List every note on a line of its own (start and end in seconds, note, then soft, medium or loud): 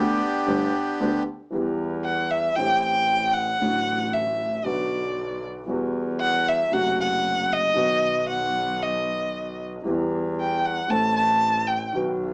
0.00 0.16 D2 medium
0.00 0.17 D2 medium
0.00 0.16 D3 medium
0.00 0.16 A3 medium
0.00 0.17 B3 medium
0.00 1.23 B3 medium
0.00 1.23 D4 medium
0.00 0.16 G4 medium
0.00 1.24 G4 medium
0.47 0.69 G1 medium
0.47 0.70 G2 medium
0.47 0.69 D3 medium
0.47 0.69 A3 medium
0.47 0.69 B3 medium
0.47 0.69 G4 medium
1.00 1.22 D2 medium
1.00 1.23 D2 medium
1.00 1.23 D3 medium
1.00 1.23 A3 soft
1.00 1.23 B3 medium
1.00 1.23 G4 medium
1.52 2.52 E2 medium
1.52 2.52 E3 medium
1.52 2.52 G3 soft
1.52 2.52 B3 soft
1.52 2.53 G4 medium
2.05 2.32 F#5 medium
2.31 2.57 E5 medium
2.55 3.56 A1 medium
2.55 3.57 A1 medium
2.55 3.57 A2 medium
2.55 3.56 E3 medium
2.55 3.56 A3 medium
2.55 3.57 C4 medium
2.55 2.82 G5 loud
2.61 3.58 G4 medium
2.83 3.34 G5 loud
3.33 4.15 F#5 loud
3.60 4.60 A1 medium
3.60 4.60 A2 medium
3.60 4.59 D3 medium
3.60 4.60 F#3 soft
3.60 4.60 A3 medium
3.60 4.61 F#4 medium
4.13 4.66 E5 medium
4.63 5.63 B1 medium
4.63 5.64 B1 medium
4.63 5.63 B2 medium
4.63 5.62 D3 medium
4.63 5.63 F#3 medium
4.63 5.64 B3 medium
4.63 5.64 F#4 medium
4.63 5.43 D5 medium
5.68 6.67 E2 medium
5.68 6.67 E3 medium
5.68 6.67 G3 soft
5.68 6.67 B3 medium
5.68 6.68 F#4 medium
6.20 6.50 F#5 loud
6.48 6.74 E5 medium
6.70 7.71 F#1 medium
6.70 7.71 F#2 medium
6.70 7.70 C3 medium
6.70 7.71 F#3 medium
6.70 7.71 A3 medium
6.70 7.72 F#4 medium
6.70 6.99 F#5 loud
7.01 7.54 F#5 loud
7.53 8.29 D#5 loud
7.74 9.75 B1 medium
7.74 9.76 B1 medium
7.74 9.75 B2 medium
7.74 9.74 D#3 medium
7.74 9.75 F#3 soft
7.74 9.75 B3 medium
7.74 9.76 F#4 medium
8.29 8.84 F#5 medium
8.82 9.60 D#5 medium
9.83 10.85 E2 medium
9.83 9.85 E3 medium
9.83 10.85 E3 medium
9.83 10.85 G3 medium
9.83 10.86 B3 medium
9.88 10.86 G4 medium
10.41 10.67 G5 medium
10.65 10.92 F#5 medium
10.88 11.90 A1 medium
10.88 11.90 A2 medium
10.88 11.89 E3 medium
10.88 11.89 A3 medium
10.88 11.90 C4 soft
10.88 11.90 A4 medium
10.88 11.16 A5 loud
11.16 11.68 A5 loud
11.66 11.94 G5 medium
11.93 12.34 B1 medium
11.93 12.34 B2 medium
11.93 12.34 D#3 medium
11.93 12.34 F#3 soft
11.93 12.34 B3 medium
11.93 12.34 F#4 medium